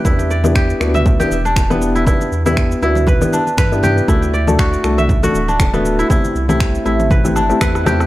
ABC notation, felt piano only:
X:1
M:4/4
L:1/16
Q:"Swing 16ths" 1/4=119
K:Em
V:1 name="Felt piano"
[B,DEG]2 z [B,DEG]3 [B,DEF]3 [B,DEG] z3 [B,DEG]3 | [B,DEG]2 z [B,DEG]3 [B,DEF]3 [B,DEG] z3 [B,DEG]3 | [A,DFA]2 z [A,DFA]3 [A,DFA]3 [A,DFA] z3 [A,DFA]3 | [A,CEG]2 z [A,CEG]3 [A,CEG]3 [A,CEG] z [A,CEG]3 [A,CEG] z |]